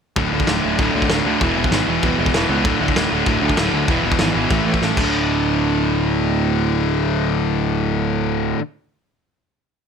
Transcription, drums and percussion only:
0.16 kick, crash
0.40 kick
0.47 snare, crash
0.79 kick, crash
1.02 kick
1.09 snare, crash
1.41 kick, crash
1.64 kick
1.72 snare, crash
2.03 kick, crash
2.26 kick
2.34 snare, crash
2.65 kick, crash
2.88 kick
2.96 snare, crash
3.26 kick, crash
3.49 kick
3.57 snare, crash
3.88 kick, crash
4.12 kick
4.19 snare, crash
4.51 kick, crash
4.74 kick
4.82 snare
4.97 kick, crash

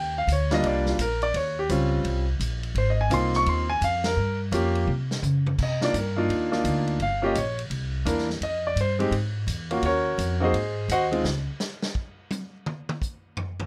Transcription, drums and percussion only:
0.28 hi-hat pedal, ride
0.51 snare, ride
0.64 ride
0.86 snare
0.99 hi-hat pedal, ride
1.22 ride
1.34 ride
1.69 hi-hat pedal, ride
2.05 ride
2.40 hi-hat pedal, ride
2.63 ride
2.75 ride
3.11 hi-hat pedal, ride
3.33 snare
3.46 ride
3.82 hi-hat pedal, ride
4.04 snare, ride
4.52 hi-hat pedal, ride
4.75 ride
4.87 high tom
5.11 snare
5.23 floor tom, hi-hat pedal
5.47 floor tom
5.58 kick, crash
5.81 snare
5.94 hi-hat pedal, ride
6.30 ride
6.52 snare
6.65 hi-hat pedal, ride
6.87 ride
7.00 ride
7.35 hi-hat pedal, ride
7.59 ride
7.71 ride
8.06 hi-hat pedal, ride
8.18 snare
8.30 snare
8.42 ride
8.77 hi-hat pedal, ride
9.00 ride
9.12 ride
9.48 hi-hat pedal, ride
9.71 ride
9.82 ride
10.19 hi-hat pedal, ride
10.54 ride
10.89 hi-hat pedal, ride
11.12 ride
11.24 snare
11.60 snare, hi-hat pedal
11.82 snare
11.95 kick
12.31 hi-hat pedal, high tom
12.66 mid tom
12.89 mid tom
13.02 kick, hi-hat pedal
13.37 floor tom
13.60 floor tom

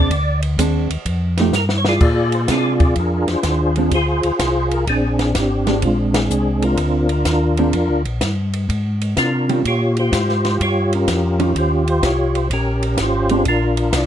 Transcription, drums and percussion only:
0.11 kick, ride
0.42 ride
0.58 kick, hi-hat pedal, ride
0.90 ride
1.06 kick, ride
1.37 snare, ride
1.53 snare, hi-hat pedal
1.69 snare
1.85 snare
2.01 kick, crash
2.32 ride
2.48 kick, snare, hi-hat pedal, ride
2.80 kick, ride
2.96 kick, ride
3.28 snare, ride
3.43 kick, snare, hi-hat pedal, ride
3.76 ride
3.91 kick, ride
4.23 ride
4.39 kick, snare, hi-hat pedal, ride
4.71 ride
4.87 kick, ride
5.19 snare, ride
5.35 kick, snare, hi-hat pedal, ride
5.67 snare, ride
5.82 kick, ride
6.14 snare, ride
6.30 hi-hat pedal
6.62 ride
6.77 kick, ride
7.09 ride
7.25 kick, snare, hi-hat pedal, ride
7.57 ride
7.73 kick, ride
8.05 ride
8.21 kick, snare, hi-hat pedal, ride
8.53 ride
8.69 kick, ride
9.01 ride
9.17 kick, snare, hi-hat pedal, ride
9.49 ride
9.65 kick, ride
9.96 ride
10.12 kick, snare, hi-hat pedal, ride
10.29 snare
10.45 snare, ride
10.60 kick, ride
10.93 ride
11.08 kick, snare, hi-hat pedal, ride
11.40 ride
11.55 kick, ride
11.87 ride
12.03 kick, snare, hi-hat pedal, ride
12.35 ride
12.50 kick, ride
12.82 ride
12.97 kick, snare, hi-hat pedal, ride
13.29 ride
13.45 kick, ride
13.77 ride
13.93 kick, snare, hi-hat pedal, ride

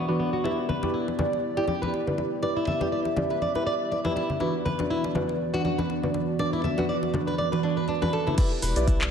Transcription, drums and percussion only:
0.45 muted conga
0.69 high conga, low conga
0.83 muted conga, high conga
1.08 muted conga
1.19 high conga, low conga
1.33 muted conga
1.57 muted conga
1.68 high conga
1.83 high conga
1.94 muted conga
2.07 low conga
2.18 muted conga
2.43 muted conga
2.67 high conga, low conga
2.81 muted conga, high conga
3.05 muted conga
3.17 high conga, low conga
3.30 muted conga
3.42 high conga
3.55 muted conga
3.92 muted conga
4.05 high conga
4.17 muted conga
4.30 low conga
4.40 muted conga
4.66 high conga, low conga
4.79 muted conga, high conga
5.04 muted conga
5.15 high conga, low conga
5.29 muted conga
5.54 muted conga
5.65 high conga
5.79 high conga
5.90 muted conga
6.03 low conga
6.14 muted conga
6.39 muted conga
6.64 high conga, low conga
6.78 muted conga, high conga
7.03 muted conga
7.14 high conga, low conga
7.28 muted conga
7.38 high conga
7.53 muted conga
7.88 muted conga
8.02 high conga
8.13 muted conga
8.27 low conga
8.38 kick, closed hi-hat, crash, shaker
8.62 open hi-hat, shaker
8.76 closed hi-hat, shaker
8.88 kick, closed hi-hat, shaker
9.01 clap

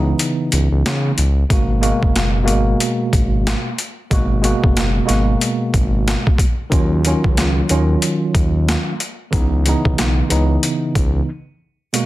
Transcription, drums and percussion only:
0.19 closed hi-hat
0.52 closed hi-hat
0.86 snare, closed hi-hat
1.18 closed hi-hat
1.50 kick, closed hi-hat
1.83 closed hi-hat
2.03 kick
2.16 snare, closed hi-hat
2.48 closed hi-hat
2.80 closed hi-hat
3.13 kick, closed hi-hat
3.47 snare, closed hi-hat
3.78 closed hi-hat
4.11 kick, closed hi-hat
4.44 closed hi-hat
4.64 kick
4.77 snare, closed hi-hat
5.09 snare, closed hi-hat
5.41 closed hi-hat
5.74 kick, closed hi-hat
6.08 snare, closed hi-hat
6.27 kick
6.38 kick, closed hi-hat
6.72 kick, closed hi-hat
7.05 closed hi-hat
7.24 kick
7.37 snare, closed hi-hat
7.69 closed hi-hat
8.02 closed hi-hat
8.35 kick, closed hi-hat
8.69 snare, closed hi-hat
9.00 closed hi-hat
9.33 kick, closed hi-hat
9.66 closed hi-hat
9.85 kick
9.98 snare, closed hi-hat
10.30 closed hi-hat
10.63 closed hi-hat
10.95 kick, closed hi-hat
11.94 closed hi-hat

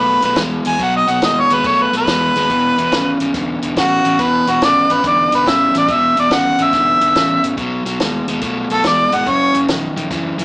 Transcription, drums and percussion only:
0.22 closed hi-hat
0.36 kick, snare, closed hi-hat
0.65 closed hi-hat
0.79 kick, closed hi-hat
1.08 closed hi-hat
1.22 snare, closed hi-hat
1.50 closed hi-hat
1.64 kick, closed hi-hat
1.93 closed hi-hat
2.07 kick, snare, closed hi-hat
2.35 snare, closed hi-hat
2.50 kick, closed hi-hat
2.78 closed hi-hat
2.92 snare, closed hi-hat
3.20 closed hi-hat
3.34 kick, snare, closed hi-hat
3.62 closed hi-hat
3.77 kick, snare, closed hi-hat
4.05 closed hi-hat
4.19 kick, closed hi-hat
4.47 snare, closed hi-hat
4.62 snare, closed hi-hat
4.90 closed hi-hat
5.04 kick, closed hi-hat
5.32 closed hi-hat
5.47 kick, snare, closed hi-hat
5.75 snare, closed hi-hat
5.88 kick, closed hi-hat
6.17 closed hi-hat
6.31 snare, closed hi-hat
6.59 closed hi-hat
6.73 kick, snare, closed hi-hat
7.01 closed hi-hat
7.15 kick, snare, closed hi-hat
7.44 closed hi-hat
7.58 kick, closed hi-hat
7.86 snare, closed hi-hat
8.00 snare, closed hi-hat
8.28 closed hi-hat
8.41 kick, closed hi-hat
8.70 closed hi-hat
8.84 kick, snare, closed hi-hat
9.12 closed hi-hat
9.26 kick, closed hi-hat
9.54 closed hi-hat
9.68 snare, closed hi-hat
9.97 closed hi-hat
10.11 kick, snare, closed hi-hat
10.39 closed hi-hat

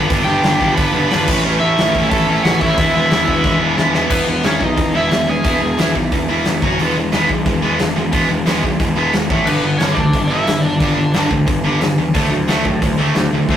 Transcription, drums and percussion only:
0.10 kick, open hi-hat
0.43 snare, open hi-hat
0.61 kick
0.77 kick, open hi-hat
1.11 snare, open hi-hat
1.28 kick, crash
1.78 snare, open hi-hat
1.95 kick
2.11 kick, open hi-hat
2.44 snare, open hi-hat
2.61 kick
2.78 kick, open hi-hat
3.11 snare, open hi-hat
3.28 kick
3.44 kick, snare
3.78 snare
3.94 snare
4.10 kick, crash
4.44 snare, open hi-hat
4.61 kick
4.77 kick, open hi-hat
5.11 snare, open hi-hat
5.44 kick, open hi-hat
5.78 snare, open hi-hat
5.95 kick
6.12 kick, open hi-hat
6.45 snare, open hi-hat
6.62 kick
6.79 open hi-hat
7.12 snare, open hi-hat
7.29 kick
7.46 kick, open hi-hat
7.79 snare, open hi-hat
8.12 kick, open hi-hat
8.46 snare, open hi-hat
8.63 kick
8.80 kick, open hi-hat
9.13 snare, open hi-hat
9.30 kick
9.47 crash
9.80 snare, open hi-hat
9.97 kick
10.13 kick, open hi-hat
10.47 snare, open hi-hat
10.80 kick, open hi-hat
11.14 snare, open hi-hat
11.31 kick
11.48 kick, open hi-hat
11.81 snare, open hi-hat
12.15 kick, open hi-hat
12.48 snare, open hi-hat
12.65 kick
12.82 kick, open hi-hat
13.15 snare, open hi-hat
13.49 kick, snare

